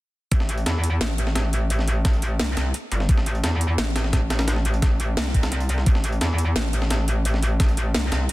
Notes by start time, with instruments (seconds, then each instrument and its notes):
0.32 wobble bass A1, kick, closed hi-hat
0.40 snare
0.49 closed hi-hat
0.58 closed hi-hat
0.66 wobble bass E2, snare, closed hi-hat
0.84 closed hi-hat
1.01 wobble bass A1, snare, closed hi-hat
1.18 closed hi-hat
1.27 snare
1.35 snare, closed hi-hat
1.53 closed hi-hat
1.70 closed hi-hat
1.79 snare
1.88 closed hi-hat
2.05 kick, snare, closed hi-hat
2.14 closed hi-hat
2.22 closed hi-hat
2.40 wobble bass C2, snare, closed hi-hat
2.57 wobble bass C2, snare, closed hi-hat
2.74 closed hi-hat
2.92 wobble bass G1, closed hi-hat
3.00 snare
3.09 wobble bass A1, kick, closed hi-hat
3.18 snare
3.26 closed hi-hat
3.35 closed hi-hat
3.44 wobble bass E2, snare, closed hi-hat
3.61 closed hi-hat
3.78 wobble bass A1, snare, closed hi-hat
3.96 snare, closed hi-hat
4.04 snare
4.13 kick, snare, closed hi-hat
4.30 snare, closed hi-hat
4.39 snare, closed hi-hat
4.48 snare, closed hi-hat
4.56 snare
4.65 closed hi-hat
4.74 closed hi-hat
4.82 kick, snare, closed hi-hat
5.00 closed hi-hat
5.17 snare, closed hi-hat
5.26 snare
5.34 kick, closed hi-hat
5.43 snare, closed hi-hat
5.52 snare, closed hi-hat
5.60 closed hi-hat
5.69 closed hi-hat
5.78 snare
5.86 wobble bass A1, kick, closed hi-hat
5.95 snare
6.04 closed hi-hat
6.12 closed hi-hat
6.21 wobble bass E2, snare, closed hi-hat
6.38 closed hi-hat
6.56 wobble bass A1, snare, closed hi-hat
6.73 closed hi-hat
6.82 snare
6.90 snare, closed hi-hat
7.08 closed hi-hat
7.25 closed hi-hat
7.34 snare
7.42 closed hi-hat
7.60 kick, snare, closed hi-hat
7.69 closed hi-hat
7.77 closed hi-hat
7.95 wobble bass C2, snare, closed hi-hat
8.12 wobble bass C2, snare, closed hi-hat
8.29 closed hi-hat